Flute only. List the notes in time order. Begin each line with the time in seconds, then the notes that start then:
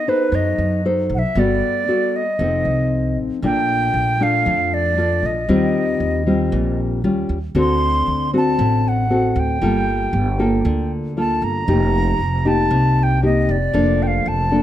Already playing: D#5
0.09 B4
0.35 D#5
1.14 F#5
1.19 E5
1.39 D5
2.16 D#5
3.45 G5
4.23 F5
4.74 D5
5.26 D#5
7.59 C6
8.37 A5
8.88 F#5
9.39 G5
11.19 A5
11.44 A#5
12.48 A5
12.99 A5
13.03 G5
13.25 D#5
13.51 D5
14.03 G5
14.07 F5
14.28 A5